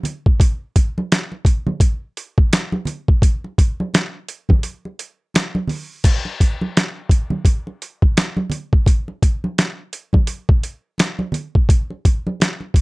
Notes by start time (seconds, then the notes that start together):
0.03 closed hi-hat, low conga
0.26 kick
0.40 kick, closed hi-hat, muted conga
0.76 kick, closed hi-hat
0.98 high conga
1.12 snare, closed hi-hat
1.32 muted conga
1.45 kick, closed hi-hat
1.67 high conga, low conga
1.80 kick, closed hi-hat
2.17 closed hi-hat
2.38 kick
2.53 snare, closed hi-hat
2.72 muted conga, high conga
2.85 closed hi-hat, low conga
3.08 kick
3.22 kick, closed hi-hat, muted conga
3.44 muted conga
3.58 kick, closed hi-hat
3.80 high conga
3.94 snare, closed hi-hat, muted conga
4.28 closed hi-hat
4.49 kick, high conga, low conga
4.63 closed hi-hat
4.85 muted conga
4.99 closed hi-hat
5.34 snare, closed hi-hat, muted conga
5.55 high conga
5.67 open hi-hat, low conga
6.04 kick, closed hi-hat, crash, muted conga
6.25 muted conga
6.40 kick, closed hi-hat
6.61 high conga
6.77 snare, closed hi-hat
7.09 kick, closed hi-hat
7.30 high conga, low conga
7.45 kick, closed hi-hat, muted conga
7.67 muted conga
7.82 closed hi-hat
8.02 kick
8.17 snare, closed hi-hat
8.37 muted conga, high conga
8.50 closed hi-hat, low conga
8.73 kick
8.86 kick, closed hi-hat, muted conga
9.08 muted conga
9.22 kick, closed hi-hat
9.44 high conga
9.58 snare, closed hi-hat
9.93 closed hi-hat
10.13 kick, high conga, low conga
10.27 closed hi-hat
10.49 kick, muted conga
10.63 closed hi-hat
10.98 snare, closed hi-hat, muted conga
11.19 muted conga, high conga
11.32 closed hi-hat, low conga
11.55 kick
11.69 kick, closed hi-hat, muted conga
11.90 muted conga
12.05 kick, closed hi-hat
12.27 high conga
12.40 snare, closed hi-hat, muted conga
12.61 muted conga
12.74 kick, closed hi-hat